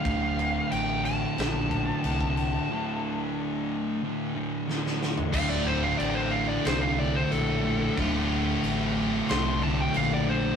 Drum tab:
CC |x-x-x-x-x-x-x-x-|----------------|x---x---x---x---|x---x---x---x---|
SD |--------o-------|------------ooo-|--------o-------|--------o-------|
FT |----------------|---------------o|----------------|----------------|
BD |o---------o--o--|----------------|o---------------|o---------------|